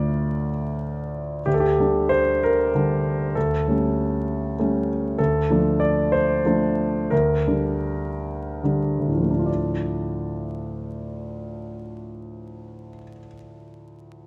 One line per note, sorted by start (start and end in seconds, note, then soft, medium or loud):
0.00 1.40 D2 soft
0.00 1.40 D3 soft
0.00 1.41 A3 soft
0.00 1.41 F4 soft
0.00 0.48 D5 medium
1.46 1.77 D2 soft
1.46 1.53 G4 medium
1.54 1.61 A4 medium
1.60 2.10 G4 medium
1.79 2.70 D3 soft
1.79 2.70 G3 soft
1.79 2.70 D4 soft
2.09 2.41 C5 medium
2.43 3.36 A#4 medium
2.75 3.32 D3 soft
2.75 3.32 G3 soft
2.75 3.32 D4 soft
3.35 3.66 D2 soft
3.35 4.88 A4 medium
3.68 4.55 G3 soft
3.68 4.55 A3 soft
3.68 4.55 C#4 soft
4.59 5.15 G3 soft
4.59 5.15 A3 soft
4.59 5.15 C#4 soft
5.18 5.48 D2 soft
5.18 5.80 A4 medium
5.50 6.41 F3 soft
5.50 6.42 A3 soft
5.50 6.42 D4 soft
5.80 6.12 D5 medium
6.12 7.11 C5 medium
6.45 7.07 F3 soft
6.45 7.08 A3 soft
6.45 7.08 D4 soft
7.10 7.45 D2 soft
7.10 9.07 A#4 medium
7.48 8.61 D3 soft
7.48 8.61 G3 soft
7.48 8.61 D4 soft
8.64 9.43 D3 soft
8.64 9.44 G3 soft
8.64 9.29 D4 soft
8.99 12.87 D2 soft
9.07 12.96 A2 soft
9.15 13.04 F3 soft
9.23 13.12 A3 soft
9.31 13.19 D4 soft
9.39 13.27 F4 soft
9.46 13.34 D5 soft